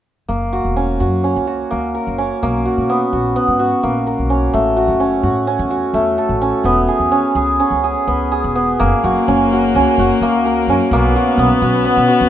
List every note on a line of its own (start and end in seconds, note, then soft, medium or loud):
0.29 0.63 F#1 medium
0.29 1.70 A#3 medium
0.53 1.00 F#4 medium
0.65 1.02 E1 medium
0.76 1.23 C#4 medium
1.00 1.34 F#2 medium
1.00 1.47 F#4 medium
1.24 2.18 C#4 medium
1.36 1.59 C#2 medium
1.47 2.65 F#4 soft
1.71 1.94 C#2 medium
1.71 2.42 A#3 medium
1.95 2.96 A#4 soft
2.07 2.29 F#1 medium
2.18 4.30 C#4 medium
2.43 2.65 B1 medium
2.43 2.96 A#3 medium
2.65 3.12 F#4 medium
2.78 3.00 B2 medium
2.90 3.35 B3 medium
3.13 3.35 A#1 medium
3.13 3.59 F#4 medium
3.36 3.89 B3 medium
3.48 3.70 G#2 medium
3.59 4.76 F#4 medium
3.83 4.17 A#1 medium
3.83 4.60 A#3 medium
4.07 4.60 A#4 soft
4.19 4.52 B1 medium
4.30 5.00 C#4 medium
4.54 4.87 A1 medium
4.54 5.94 A3 medium
4.77 5.23 F#4 medium
4.88 5.25 F#1 medium
5.00 5.47 C#4 medium
5.23 5.57 A2 medium
5.23 5.70 F#4 medium
5.47 6.41 C#4 medium
5.59 5.81 E2 medium
5.71 8.95 F#4 medium
5.93 6.16 E2 medium
5.93 6.94 A3 medium
6.18 6.94 A4 medium
6.29 6.51 A1 medium
6.42 7.11 C#4 medium
6.64 6.87 E1 medium
6.64 8.07 B3 medium
6.88 7.35 G#4 medium
6.99 7.22 E2 medium
7.12 7.59 C#4 medium
7.35 7.58 C#2 medium
7.35 7.83 G#4 medium
7.60 9.28 C#4 medium
7.71 7.93 C#2 medium
7.84 8.31 G#4 medium
8.07 8.41 C#2 medium
8.07 8.55 B3 medium
8.32 11.35 G#4 medium
8.44 8.78 E1 medium
8.55 8.86 B3 medium
8.80 8.91 F#1 medium
8.80 10.22 A#3 medium
8.80 10.94 A#3 medium
9.04 9.15 F#1 medium
9.04 9.52 F#4 medium
9.28 9.72 F#1 medium
9.28 9.75 C#4 medium
9.53 9.99 F#4 medium
9.75 9.86 C#2 medium
9.75 10.69 C#4 medium
9.98 10.09 F#1 medium
9.98 11.15 F#4 medium
10.21 10.65 C#2 medium
10.21 10.93 A#3 medium
10.46 11.45 A#4 medium
10.68 10.79 F#2 medium
10.68 12.29 C#4 medium
10.91 11.13 B1 medium
10.91 11.45 A#3 medium
10.91 12.29 B3 medium
11.16 11.62 F#4 medium
11.38 11.49 B1 medium
11.38 11.84 B3 medium
11.62 11.84 B1 medium
11.62 12.08 F#4 medium
11.85 12.29 B3 medium
11.97 12.08 B2 medium
12.08 12.29 F#4 medium
12.21 12.29 D#2 medium